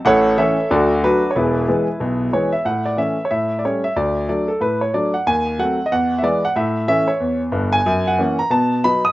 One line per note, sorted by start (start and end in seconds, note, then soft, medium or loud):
0.05 0.32 A1 medium
0.05 0.32 A2 medium
0.05 0.36 A4 medium
0.05 0.36 C#5 medium
0.05 0.38 F#5 loud
0.38 0.55 E3 medium
0.38 0.55 A3 medium
0.38 0.56 C#4 medium
0.38 0.69 A4 medium
0.38 0.68 C#5 medium
0.38 0.70 E5 medium
0.71 0.98 D2 medium
0.71 0.98 D3 medium
0.71 1.01 F#4 medium
0.71 1.01 A4 medium
0.71 1.03 D5 medium
1.04 1.21 F#3 soft
1.04 1.21 A3 soft
1.04 1.28 D4 medium
1.04 1.28 F#4 medium
1.04 1.29 B4 medium
1.31 1.36 C#5 medium
1.35 1.63 E1 medium
1.35 1.63 E2 medium
1.35 2.49 E4 medium
1.35 2.49 G#4 medium
1.35 2.52 B4 medium
1.68 1.86 E3 soft
1.68 1.86 G#3 medium
1.68 1.86 B3 medium
2.00 2.28 B1 medium
2.00 2.27 B2 medium
2.33 2.50 E3 soft
2.33 2.51 G#3 soft
2.33 2.51 B3 soft
2.33 2.52 C#5 medium
2.52 2.65 E5 medium
2.65 2.93 A2 medium
2.65 2.85 F#5 medium
2.86 2.98 D5 medium
2.97 3.15 E3 soft
2.97 3.15 A3 soft
2.97 3.16 C#4 soft
2.97 3.24 E5 medium
3.25 3.30 C#5 medium
3.31 3.58 A2 medium
3.31 3.56 E5 medium
3.59 3.64 D5 medium
3.65 3.82 G3 soft
3.65 3.82 A3 soft
3.65 3.82 C#4 soft
3.65 3.84 C#5 medium
3.84 3.96 E5 medium
3.96 4.23 D2 medium
3.96 4.28 D5 medium
4.29 4.46 F#3 soft
4.29 4.46 A3 soft
4.29 4.47 D4 soft
4.29 4.48 D5 medium
4.48 4.60 A4 medium
4.61 4.88 A2 soft
4.61 4.81 B4 medium
4.81 4.93 C#5 medium
4.94 5.11 F#3 soft
4.94 5.12 A3 soft
4.94 5.12 D4 soft
4.94 5.13 D5 medium
5.14 5.26 F#5 medium
5.27 5.54 D#2 medium
5.27 5.59 G#5 medium
5.59 5.76 F#3 soft
5.59 5.77 A3 soft
5.59 5.77 C4 soft
5.59 5.85 F#5 medium
5.86 5.91 D#5 medium
5.91 6.19 E2 medium
5.91 6.18 F#5 medium
6.18 6.41 E3 soft
6.18 6.24 E5 medium
6.23 6.41 G#3 soft
6.23 6.41 B3 soft
6.23 6.43 D5 medium
6.45 6.57 F#5 medium
6.56 6.83 A2 medium
6.56 6.87 E5 medium
6.88 7.06 E3 soft
6.88 7.07 A3 soft
6.88 7.06 C#4 medium
6.88 7.08 E5 medium
7.08 7.41 C#5 medium
7.20 7.48 E2 medium
7.52 7.79 G1 medium
7.52 7.79 G2 medium
7.73 8.06 G#5 medium
7.86 8.14 F#2 medium
8.08 8.39 F#5 medium
8.18 8.36 E3 soft
8.18 8.37 A#3 soft
8.18 8.37 C#4 medium
8.39 8.51 A#5 medium
8.50 8.78 B2 medium
8.50 8.84 A5 medium
8.84 9.02 F#3 soft
8.84 9.02 B3 soft
8.84 9.03 D#4 soft
8.84 9.04 B5 medium
9.05 9.12 D#6 medium